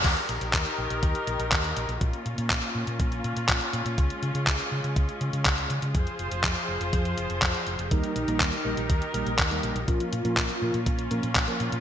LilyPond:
<<
  \new Staff \with { instrumentName = "Analog polysynth" } { \time 4/4 \key ees \mixolydian \tempo 4 = 122 r1 | r1 | r1 | r1 |
ees'8 ees'8 r16 ees'8 r2 r16 | f'8 f'8 r16 f'8 r2 r16 | }
  \new Staff \with { instrumentName = "String section" } { \time 4/4 \key ees \mixolydian << { <ees g' bes'>1 | <des' f'>1~ | <des' f'>1 | <f aes' c''>1 |
<ees g' bes'>1 | <des' f'>1 | } \\ { ees'1 | bes1 | aes1 | f'1 |
ees'1 | bes1 | } >> }
  \new Staff \with { instrumentName = "Tine electric piano" } { \time 4/4 \key ees \mixolydian r1 | r1 | r1 | r1 |
<g bes ees' bes'>8 r16 <g bes ees' bes'>8 r16 <g bes ees' bes'>16 r8. <g bes ees' bes'>16 r8 <g bes ees' bes'>8 r16 | <f bes des' bes'>8 r16 <f bes des' bes'>8 r16 <f bes des' bes'>16 r8. <f bes des' bes'>16 r8 <f bes des' bes'>8 r16 | }
  \new Staff \with { instrumentName = "Fingered electric bass" } { \clef bass \time 4/4 \key ees \mixolydian ees,16 r16 bes,,16 bes,,16 ees,16 r16 bes,,16 bes,,16 ees,16 r16 bes,,16 bes,,16 ees,8 bes,,16 bes,,16 | bes,,16 r16 bes,16 bes,16 bes,,16 r16 bes,16 bes,16 bes,,8 bes,16 bes,16 bes,,16 r16 bes,16 bes,16 | des,16 r16 des16 des16 des,16 r16 des16 des16 des,16 r16 des16 des16 des,8 des16 des16 | f,16 r16 f,,16 f,,16 f,16 r16 f,,16 f,,16 f,8 f,,16 f,,16 f,16 r16 f,,16 f,,16 |
ees,16 r16 bes,,16 bes,,16 ees,16 r16 bes,,16 bes,,16 ees,16 r16 bes,,16 bes,,16 ees,8 bes,,16 bes,,16 | bes,,16 r16 bes,16 bes,16 bes,,16 r16 bes,16 bes,16 bes,,8 bes,16 bes,16 bes,,16 r16 bes,16 bes,16 | }
  \new DrumStaff \with { instrumentName = "Drums" } \drummode { \time 4/4 <cymc hh bd>16 hh16 hh16 hh16 <hc hh bd>16 hh8 hh16 <hh bd>16 hh16 hh16 hh16 <hc hh bd>16 hh16 hh16 hh16 | <hh bd>16 hh16 hh16 hh16 <hc hh bd>16 hh8 hh16 <hh bd>16 hh16 hh16 hh16 <hc hh bd>16 hh16 hh16 hh16 | <hh bd>16 hh16 hh16 hh16 <hc hh bd>16 hh8 hh16 <hh bd>16 hh16 hh16 hh16 <hc hh bd>16 hh16 hh16 hh16 | <hh bd>16 hh16 hh16 hh16 <hc hh bd>16 hh8 hh16 <hh bd>16 hh16 hh16 hh16 <hc hh bd>16 hh16 hh16 hh16 |
<hh bd>16 hh16 hh16 hh16 <hc hh bd>16 hh8 hh16 <hh bd>16 hh16 hh16 hh16 <hc hh bd>16 hh16 hh16 hh16 | <hh bd>16 hh16 hh16 hh16 <hc hh bd>16 hh8 hh16 <hh bd>16 hh16 hh16 hh16 <hc hh bd>16 hh16 hh16 hh16 | }
>>